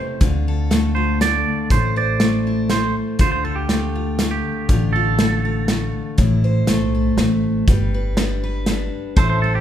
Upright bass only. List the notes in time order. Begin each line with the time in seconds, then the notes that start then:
0.21 D2
1.71 A1
3.20 D2
4.69 A1
6.18 A1
6.68 B1
7.17 A1
7.68 G1
9.17 A1